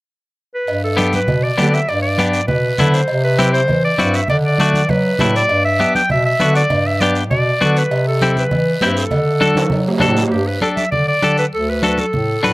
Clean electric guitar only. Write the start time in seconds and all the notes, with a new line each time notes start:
0.97 B3 D4 G4
1.58 B3 D4 G4
2.19 B3 D4 G4
2.79 B3 D4 E4
3.39 C4 E4 G4
3.98 C4 E4 F#4
4.60 A3 D4 F#4
5.20 A3 D4 E4
5.80 B3 D4 G4
6.40 B3 D4 F#4
7.02 B3 D4 G4
7.61 B3 D4 F#4
8.22 C4 E4 G4
8.82 C4 E4 G4
9.41 D4 F#4 A4
10.00 D4 F#4 A4
10.62 D4 G4 A4
11.23 D4 G4 A4
11.83 D4 F#4 A4
12.43 D4 F#4 B4